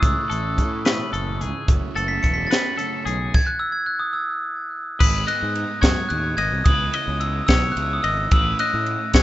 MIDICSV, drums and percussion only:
0, 0, Header, 1, 2, 480
1, 0, Start_track
1, 0, Tempo, 551978
1, 22, Time_signature, 6, 3, 24, 8
1, 8024, End_track
2, 0, Start_track
2, 0, Title_t, "Drums"
2, 23, Note_on_c, 9, 36, 106
2, 27, Note_on_c, 9, 42, 80
2, 110, Note_off_c, 9, 36, 0
2, 114, Note_off_c, 9, 42, 0
2, 271, Note_on_c, 9, 42, 57
2, 358, Note_off_c, 9, 42, 0
2, 504, Note_on_c, 9, 36, 71
2, 509, Note_on_c, 9, 42, 55
2, 591, Note_off_c, 9, 36, 0
2, 596, Note_off_c, 9, 42, 0
2, 741, Note_on_c, 9, 42, 79
2, 751, Note_on_c, 9, 38, 108
2, 828, Note_off_c, 9, 42, 0
2, 838, Note_off_c, 9, 38, 0
2, 988, Note_on_c, 9, 42, 57
2, 1075, Note_off_c, 9, 42, 0
2, 1227, Note_on_c, 9, 42, 55
2, 1314, Note_off_c, 9, 42, 0
2, 1462, Note_on_c, 9, 42, 80
2, 1464, Note_on_c, 9, 36, 116
2, 1549, Note_off_c, 9, 42, 0
2, 1551, Note_off_c, 9, 36, 0
2, 1713, Note_on_c, 9, 42, 59
2, 1800, Note_off_c, 9, 42, 0
2, 1946, Note_on_c, 9, 36, 68
2, 1948, Note_on_c, 9, 42, 57
2, 2033, Note_off_c, 9, 36, 0
2, 2035, Note_off_c, 9, 42, 0
2, 2186, Note_on_c, 9, 42, 85
2, 2196, Note_on_c, 9, 38, 100
2, 2273, Note_off_c, 9, 42, 0
2, 2283, Note_off_c, 9, 38, 0
2, 2424, Note_on_c, 9, 42, 67
2, 2511, Note_off_c, 9, 42, 0
2, 2667, Note_on_c, 9, 42, 66
2, 2754, Note_off_c, 9, 42, 0
2, 2904, Note_on_c, 9, 49, 86
2, 2908, Note_on_c, 9, 36, 110
2, 2991, Note_off_c, 9, 49, 0
2, 2995, Note_off_c, 9, 36, 0
2, 4351, Note_on_c, 9, 49, 123
2, 4353, Note_on_c, 9, 36, 113
2, 4438, Note_off_c, 9, 49, 0
2, 4440, Note_off_c, 9, 36, 0
2, 4593, Note_on_c, 9, 51, 71
2, 4680, Note_off_c, 9, 51, 0
2, 4830, Note_on_c, 9, 51, 66
2, 4917, Note_off_c, 9, 51, 0
2, 5067, Note_on_c, 9, 36, 76
2, 5067, Note_on_c, 9, 51, 95
2, 5076, Note_on_c, 9, 38, 114
2, 5154, Note_off_c, 9, 36, 0
2, 5154, Note_off_c, 9, 51, 0
2, 5163, Note_off_c, 9, 38, 0
2, 5305, Note_on_c, 9, 51, 76
2, 5392, Note_off_c, 9, 51, 0
2, 5546, Note_on_c, 9, 51, 75
2, 5633, Note_off_c, 9, 51, 0
2, 5785, Note_on_c, 9, 51, 106
2, 5789, Note_on_c, 9, 36, 118
2, 5872, Note_off_c, 9, 51, 0
2, 5876, Note_off_c, 9, 36, 0
2, 6031, Note_on_c, 9, 51, 80
2, 6117, Note_off_c, 9, 51, 0
2, 6266, Note_on_c, 9, 51, 75
2, 6353, Note_off_c, 9, 51, 0
2, 6505, Note_on_c, 9, 51, 105
2, 6511, Note_on_c, 9, 36, 89
2, 6515, Note_on_c, 9, 38, 118
2, 6592, Note_off_c, 9, 51, 0
2, 6598, Note_off_c, 9, 36, 0
2, 6602, Note_off_c, 9, 38, 0
2, 6754, Note_on_c, 9, 51, 77
2, 6841, Note_off_c, 9, 51, 0
2, 6989, Note_on_c, 9, 51, 70
2, 7076, Note_off_c, 9, 51, 0
2, 7228, Note_on_c, 9, 51, 107
2, 7233, Note_on_c, 9, 36, 114
2, 7315, Note_off_c, 9, 51, 0
2, 7320, Note_off_c, 9, 36, 0
2, 7470, Note_on_c, 9, 51, 77
2, 7557, Note_off_c, 9, 51, 0
2, 7707, Note_on_c, 9, 51, 66
2, 7794, Note_off_c, 9, 51, 0
2, 7943, Note_on_c, 9, 51, 98
2, 7948, Note_on_c, 9, 36, 83
2, 7953, Note_on_c, 9, 38, 120
2, 8024, Note_off_c, 9, 36, 0
2, 8024, Note_off_c, 9, 38, 0
2, 8024, Note_off_c, 9, 51, 0
2, 8024, End_track
0, 0, End_of_file